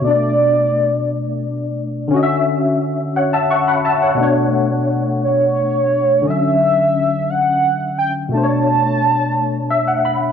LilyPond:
<<
  \new Staff \with { instrumentName = "Soft synth lead" } { \time 6/8 \key b \minor \tempo 4. = 58 d''2~ d''8 r8 | r2. | r4. cis''4. | e''4. fis''4 g''8 |
a''2~ a''8 r8 | }
  \new Staff \with { instrumentName = "Tine electric piano" } { \time 6/8 \key b \minor << { r2. | r4. <cis'' fis''>16 <e'' a''>16 <fis'' cis'''>16 <fis'' b''>16 <e'' a''>16 <cis'' fis''>16~ | <cis'' fis''>16 r2 r8. | r2. |
r2 e''16 fis''16 b''8 | } \\ { <b, a d' d''>2. | <d cis' fis' dis'' e''>2. | <b, a d' cis''>2. | <d fis cis' e''>2. |
<b, a d' c'' cis''>2. | } >> }
>>